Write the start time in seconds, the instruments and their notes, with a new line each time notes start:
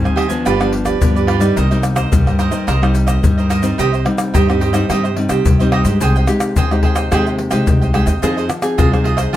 Already playing: nylon-string guitar D#3 G3 C4 D#4
0.04 upright bass D2, cavaquinho C5 D#5 G#5, pandeiro, tamborim, shaker, surdo
0.16 cavaquinho G4 C5 D#5 G#5, pandeiro, tamborim
0.29 nylon-string guitar F3 B3 D4, cavaquinho C5 D#5 G#5, pandeiro, shaker, surdo
0.45 upright bass G1, nylon-string guitar G2, cavaquinho F4 G4 B4 D5, pandeiro, tamborim, shaker, surdo
0.60 nylon-string guitar F3 B3 D4, cavaquinho G4 B4 D5, pandeiro, tamborim, shaker
0.73 muted cavaquinho stroke, pandeiro
0.85 cavaquinho G4 B4 D5, pandeiro, tamborim, shaker, surdo
1.01 upright bass G2, nylon-string guitar D3 F3 B3 D4, pandeiro, shaker, surdo
1.15 cavaquinho G4 B4 D5, pandeiro, shaker
1.27 cavaquinho F4 G4 B4 D5, pandeiro, tamborim
1.40 nylon-string guitar G3 A#3 D#4, cavaquinho G4 B4 D5, pandeiro, shaker
1.56 upright bass C2, nylon-string guitar C3, cavaquinho D#4 A#4 C5 D#5, pandeiro, shaker, surdo
1.71 nylon-string guitar G3 A#3 D#4, cavaquinho A#4 C5 D#5, pandeiro, shaker
1.83 muted cavaquinho stroke, pandeiro, tamborim, shaker
1.96 cavaquinho A#4 C5 D#5, pandeiro, tamborim, shaker, surdo
2.12 upright bass C2, nylon-string guitar G2 G3 A#3 D#4, pandeiro, shaker, surdo
2.26 upright bass G2, cavaquinho A#4 C5 D#5, pandeiro, tamborim, shaker, surdo
2.39 cavaquinho D#4 A#4 C5 D#5, pandeiro, tamborim, shaker, surdo
2.51 nylon-string guitar G3 A#3 D#4, cavaquinho A#4 C5 D#5, pandeiro, shaker, surdo
2.67 upright bass C2, nylon-string guitar C3, cavaquinho D#4 A#4 C5 D#5, pandeiro, tamborim, shaker, surdo
2.82 nylon-string guitar G3 A#3 D#4, cavaquinho A#4 C5 D#5, pandeiro, tamborim, shaker
2.94 muted cavaquinho stroke, pandeiro, shaker
3.07 cavaquinho A#4 C5 D#5, pandeiro, tamborim, shaker, surdo
3.23 nylon-string guitar G2 G3 A#3 D#4, upright bass G2, pandeiro, shaker, surdo
3.38 cavaquinho A#4 C5 D#5, pandeiro, shaker
3.50 cavaquinho D#4 A#4 C5 D#5, pandeiro, tamborim, shaker
3.62 nylon-string guitar G3 C4 D#4, cavaquinho A#4 C5 D#5, pandeiro, shaker
3.78 upright bass C2, nylon-string guitar C3, cavaquinho D#4 G4 C5 D#5, pandeiro, shaker, surdo
3.93 cavaquinho G4 C5 D#5, pandeiro, shaker
4.05 nylon-string guitar G3 C4 D#4, muted cavaquinho stroke, pandeiro, tamborim
4.18 pandeiro, tamborim, shaker
4.34 upright bass G2, nylon-string guitar G2, cavaquinho D#4 G4 C5 D#5, pandeiro, shaker, surdo
4.48 nylon-string guitar G3 C4 D#4, cavaquinho G4 C5 D#5, pandeiro, tamborim, shaker
4.60 cavaquinho D#4 G4 C5 D#5, pandeiro
4.73 nylon-string guitar G3 C4 D#4, cavaquinho G4 C5 D#5, pandeiro, tamborim, shaker
4.89 upright bass G2, nylon-string guitar C3 G3 C4 D#4, cavaquinho D#4 G4 C5 D#5, pandeiro, tamborim, shaker, surdo
5.04 cavaquinho G4 C5 D#5, pandeiro, shaker
5.16 nylon-string guitar G3 C4 D#4, muted cavaquinho stroke, pandeiro
5.29 upright bass C2, cavaquinho G4 C5 D#5, pandeiro, tamborim, shaker
5.45 upright bass C2, nylon-string guitar G2, pandeiro, shaker, surdo
5.59 nylon-string guitar G3 C4 D#4, cavaquinho G4 C5 D#5, pandeiro, shaker
5.72 cavaquinho D#4 G4 C5 D#5, pandeiro, tamborim
5.85 upright bass G2, nylon-string guitar G#3 D#4 G4, cavaquinho G4 C5 D#5, pandeiro, shaker
6.00 upright bass C2, nylon-string guitar C3, cavaquinho G#4 C5 D#5 G5, pandeiro, shaker, surdo
6.16 cavaquinho C5 D#5 G5, pandeiro, shaker
6.27 nylon-string guitar G#3 D#4 G4, muted cavaquinho stroke, pandeiro, tamborim, shaker
6.40 pandeiro, tamborim, shaker
6.56 upright bass D#2, nylon-string guitar C3, cavaquinho G#4 C5 D#5 G5, pandeiro, shaker, surdo
6.71 nylon-string guitar G#3 D#4 G4, cavaquinho C5 D#5 G5, pandeiro, tamborim, shaker
6.83 cavaquinho G#4 C5 D#5 G5, pandeiro, surdo
6.95 cavaquinho C5 D#5 G5, pandeiro, tamborim, shaker
7.11 upright bass D#2, nylon-string guitar C3 G#3 D#4 G4, cavaquinho G#4 C5 D#5 G5, pandeiro, tamborim, shaker, surdo
7.26 cavaquinho C5 D#5 G5, pandeiro, shaker
7.38 muted cavaquinho stroke, pandeiro
7.51 upright bass C2, nylon-string guitar G#3 D#4 G4, cavaquinho C5 D#5 G5, pandeiro, tamborim, shaker
7.67 upright bass C2, nylon-string guitar C3, pandeiro, shaker, surdo
7.81 cavaquinho C5 D#5 G5, pandeiro, shaker
7.93 nylon-string guitar G#3 D#4 G4, cavaquinho G#4 C5 D#5 G5, pandeiro, tamborim
8.06 upright bass D#2, cavaquinho C5 D#5 G5, pandeiro, shaker
8.22 upright bass F2, nylon-string guitar F3 C4 D#4 G#4, cavaquinho F4 G#4 C5 D#5, pandeiro, shaker, surdo
8.37 cavaquinho G#4 C5 D#5, pandeiro, shaker
8.49 muted cavaquinho stroke, pandeiro, tamborim, shaker
8.62 nylon-string guitar C4 D#4 G#4, pandeiro, tamborim, shaker
8.78 upright bass C2, nylon-string guitar C3, cavaquinho F4 G#4 C5 D#5, pandeiro, shaker, surdo
8.92 nylon-string guitar C4 D#4 G#4, cavaquinho G#4 C5 D#5, pandeiro, tamborim, shaker
9.04 cavaquinho F4 G#4 C5 D#5, pandeiro
9.17 cavaquinho G#4 C5 D#5, pandeiro, tamborim, shaker
9.33 cavaquinho F4 G#4